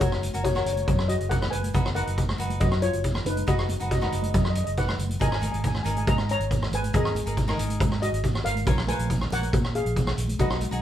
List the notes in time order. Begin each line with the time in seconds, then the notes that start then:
0.00 F#1 F#4 A#4 C#5, kick, closed hi-hat, low conga
0.12 cross-stick
0.22 closed hi-hat, high conga, low conga
0.34 F#1 F#4 A#4 C#5, closed hi-hat
0.44 F#4 C#5, kick, closed hi-hat
0.52 F#4 A#4 C#5, cross-stick, high conga
0.56 C#5
0.65 F#1 C#5, closed hi-hat, low conga
0.73 C#5, closed hi-hat, high conga
0.80 C#5
0.88 F#2 C#5, kick, closed hi-hat
0.95 C#5, cross-stick
1.08 F#4 D#5, closed hi-hat
1.20 F#1, closed hi-hat
1.29 A#4 F#5, kick, closed hi-hat
1.42 cross-stick, high conga
1.50 F#1 B4 G#5, closed hi-hat, low conga
1.63 closed hi-hat, high conga
1.73 F#1 D#4 F#4 B4, kick, closed hi-hat, low conga
1.86 cross-stick
1.95 D#4 F#4 A#4 B4 F#5, closed hi-hat, high conga, low conga
2.07 F#1, closed hi-hat
2.18 kick, closed hi-hat
2.28 cross-stick, high conga
2.38 F#1 D#4 F#4 B4, closed hi-hat, low conga
2.50 closed hi-hat, high conga
2.60 F#2 F#4 D#5, kick, closed hi-hat
2.71 cross-stick
2.82 F4 C#5, closed hi-hat
2.93 F#1, closed hi-hat
3.04 kick, closed hi-hat
3.14 cross-stick, high conga
3.25 F#1 D#4 B4, closed hi-hat, low conga
3.37 closed hi-hat, high conga
3.47 F#1 D#4 F#4 B4 D#5, kick, closed hi-hat, low conga
3.59 cross-stick
3.69 closed hi-hat, high conga, low conga
3.80 F#1 D#4 F#4 B4, closed hi-hat
3.91 F#4 D#5, kick, closed hi-hat
3.98 D#4 F#4 D#5, cross-stick, high conga
4.03 B4 D#5
4.12 F#1 D#5, closed hi-hat, low conga
4.22 D#5, closed hi-hat, high conga
4.30 D#5
4.34 F#2 D#5, kick, closed hi-hat
4.44 D#5, cross-stick
4.50 D#5
4.55 D#5, closed hi-hat
4.64 F#1 D#5, closed hi-hat
4.77 B4 F#5, kick, closed hi-hat
4.88 cross-stick, high conga
4.98 F#1, closed hi-hat, low conga
5.09 closed hi-hat, high conga
5.20 G#1 D#4 G#4 A#4 D#5 G#5, kick, closed hi-hat, low conga
5.28 G#5, cross-stick
5.35 G#5
5.41 D#4 G#4 A#4 G#5, closed hi-hat, high conga, low conga
5.51 G#1 G#5, closed hi-hat
5.64 G#5, kick, closed hi-hat
5.74 cross-stick, high conga
5.83 G#1 D#4 G#4 A#4 G#5, closed hi-hat, low conga
5.90 G#5
5.96 G#5, closed hi-hat, high conga
6.07 G#2 D#5 A#5, kick, closed hi-hat
6.18 cross-stick
6.29 C#5 A#5, closed hi-hat
6.40 G#1, closed hi-hat
6.51 kick, closed hi-hat
6.61 cross-stick, high conga
6.72 G#1 B4 G#5, closed hi-hat, low conga
6.83 closed hi-hat, high conga
6.93 G#1 D#4 G#4 A#4 D#5, kick, closed hi-hat, low conga
7.05 cross-stick
7.15 closed hi-hat, high conga, low conga
7.25 G#1 D#4 G#4 A#4, closed hi-hat
7.37 kick, closed hi-hat
7.47 D#4 G#4 A#4, cross-stick, high conga
7.57 G#1, closed hi-hat, low conga
7.69 closed hi-hat, high conga
7.80 G#2, kick, closed hi-hat
7.92 cross-stick
8.02 F#4 D#5, closed hi-hat
8.13 G#1, closed hi-hat
8.24 kick, closed hi-hat
8.34 cross-stick, high conga
8.44 G#1 A#4 F5, closed hi-hat, low conga
8.55 closed hi-hat, high conga
8.65 A#1 F4 A#4 C#5, kick, closed hi-hat, low conga
8.78 cross-stick
8.87 F4 A#4 B4 C#5 G#5, closed hi-hat, high conga, low conga
8.99 A#1, closed hi-hat
9.10 kick, closed hi-hat
9.20 cross-stick, high conga
9.31 A#1 A#4 C#5 F#5, closed hi-hat, low conga
9.42 closed hi-hat, high conga
9.53 A#2, kick, closed hi-hat
9.64 cross-stick
9.75 G#4 F5, closed hi-hat
9.85 A#1, closed hi-hat
9.96 kick, closed hi-hat
10.07 cross-stick, high conga
10.17 A#1, closed hi-hat, low conga
10.28 closed hi-hat, high conga
10.39 B1 D#4 F#4 B4 D#5, kick, closed hi-hat, low conga
10.50 cross-stick
10.61 closed hi-hat, high conga, low conga
10.71 B1 D#4 F#4 G#4, closed hi-hat